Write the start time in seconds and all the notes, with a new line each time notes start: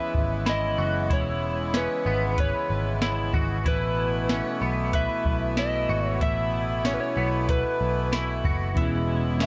Already playing: C#3 E3 G#3 B3 E4 B4 E5
0.15 G#1, kick
0.46 E4 D#5, snare, closed hi-hat
0.78 F#1 F#4
1.10 E1 E4 C#5, kick, closed hi-hat
1.74 C#4 B4, snare, closed hi-hat
2.06 G#1 B3
2.38 B4 C#5, kick, closed hi-hat
2.70 G#1
3.02 E4, snare, closed hi-hat
3.33 G#1 F#4, kick
3.66 A1 B2 A3 E4 B4, kick, closed hi-hat
4.29 C#4, snare, closed hi-hat
4.62 B1 B3
4.93 B4 E5, kick, closed hi-hat
5.25 B1, kick
5.57 E4 D#5, snare, closed hi-hat
5.89 G#1 F#4
6.08 C#5
6.21 A1 E4 E5, kick, closed hi-hat
6.85 C#4 C#5, snare, closed hi-hat, tambourine
6.94 B4
7.00 C#5
7.17 B1 B3
7.49 B4, kick, closed hi-hat
7.81 B1
8.13 E4, snare, closed hi-hat, tambourine
8.45 F#1 F#4, kick
8.75 E1 E2 B2 C#3 E3 G#3 E4, kick, closed hi-hat
8.79 G#3 C#4 E4
9.40 C#4, snare, closed hi-hat, tambourine